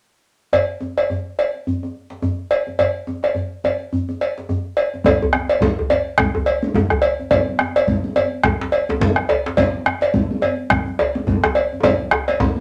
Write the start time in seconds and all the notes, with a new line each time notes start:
0.53 cowbell, djembe slap, djembe bass
0.81 djembe tone
0.98 cowbell, djembe slap
1.10 djembe slap, djembe bass
1.38 cowbell, djembe slap
1.54 djembe slap
1.67 djembe bass
1.83 djembe tone
1.94 djembe slap
2.10 djembe slap
2.22 djembe slap, djembe tone, djembe bass
2.51 cowbell
2.67 djembe slap, djembe tone
2.79 cowbell, djembe slap, djembe bass
3.07 djembe tone
3.23 cowbell, djembe slap
3.35 djembe slap, djembe bass
3.64 cowbell, djembe slap, djembe tone
3.80 djembe slap
3.93 djembe bass
4.09 djembe tone
4.21 cowbell, djembe slap
4.38 djembe slap
4.49 djembe slap, djembe tone, djembe bass
4.77 cowbell
4.94 djembe slap, djembe tone
5.04 bombo low, cowbell, high conga, djembe tone, low conga, djembe bass
5.22 djembe bass
5.33 bombo rim, djembe slap, djembe tone
5.49 cowbell, djembe slap
5.61 bombo low, djembe tone, djembe bass, low conga
5.79 djembe bass
5.90 cowbell, djembe slap, djembe tone
6.18 bombo rim, bombo low, djembe tone, djembe bass, low conga
6.35 djembe tone, djembe bass
6.46 cowbell
6.63 djembe slap, high conga
6.74 bombo low, djembe slap, djembe tone, low conga, djembe bass
6.90 bombo rim, djembe slap, djembe bass
7.02 cowbell, djembe slap
7.19 djembe tone
7.31 bombo low, cowbell, high conga, low conga, djembe bass
7.59 bombo rim, djembe slap, djembe tone
7.76 cowbell, djembe slap
7.87 bombo low, low conga, djembe bass
8.04 high conga
8.16 cowbell, djembe slap, djembe tone
8.44 bombo rim, bombo low, djembe tone, djembe bass, low conga
8.61 djembe slap, djembe tone
8.72 cowbell
8.89 djembe slap, high conga, djembe tone
9.00 bombo low, djembe slap, djembe tone, djembe bass, low conga
9.16 bombo rim
9.29 cowbell, djembe tone
9.46 djembe slap, djembe tone
9.57 bombo low, cowbell, high conga, djembe bass, low conga
9.86 bombo rim, djembe slap, djembe tone
10.01 cowbell, djembe slap
10.14 bombo low, low conga, djembe bass
10.31 high conga
10.42 cowbell, djembe slap, djembe tone
10.70 bombo rim, bombo low, djembe bass, low conga
10.86 djembe tone
10.99 cowbell, djembe tone
11.15 djembe slap, high conga
11.27 bombo low, djembe slap, djembe tone, djembe bass, low conga
11.43 bombo rim, djembe slap, djembe tone
11.55 cowbell, djembe slap
11.73 djembe tone
11.83 bombo low, cowbell, djembe tone, high conga, low conga, djembe bass
12.11 bombo rim, djembe tone, high conga
12.28 bombo rim, cowbell, djembe slap, high conga
12.40 bombo low, djembe tone, low conga, djembe bass
12.56 high conga